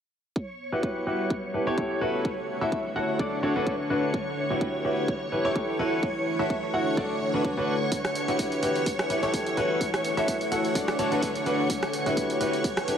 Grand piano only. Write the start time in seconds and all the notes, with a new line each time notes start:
0.72 E4 F#4 G4 B4
1.07 E4 F#4 G4 B4
1.54 E4 G4 A4 B4
1.67 E4 G4 A4 C#5
1.78 E4 C#5
2.01 E4 F#4 A4 B4
2.61 E4 F#4 A4 E5
2.96 E4 F#4 A4 F#5
3.19 D4 F#4 A4 D5
3.43 D4 F#4 A4 C#5
3.56 D4 F#4 A4 B4
3.90 D4 F#4 A4 B4
4.50 E4 F#4 G4 B4
4.85 E4 F#4 G4 B4
5.32 E4 G4 A4 B4
5.45 E4 G4 A4 C#5
5.56 E4 G4 A4 C#5
5.79 E4 F#4 A4 B4
6.39 E4 F#4 A4 E5
6.74 E4 F#4 A4 F#5
6.97 D4 F#4 A4 D5
7.34 D4 F#4 A4 B4
7.57 D4 F#4 A4 B4
8.28 E4 F#4 G4 B4
8.63 E4 F#4 G4 B4
9.10 E4 G4 A4 B4
9.23 E4 G4 A4 C#5
9.34 E4 G4 A4 C#5
9.57 E4 F#4 A4 B4
10.17 E4 F#4 A4 E5
10.52 E4 F#4 A4 F#5
10.75 D4 F#4 A4 D5
10.99 D4 F#4 A4 C#5
11.12 D4 F#4 A4 B4
11.46 D4 F#4 A4 B4
12.06 E4 F#4 G4 B4
12.41 E4 F#4 G4 B4
12.88 E4 G4 A4 B4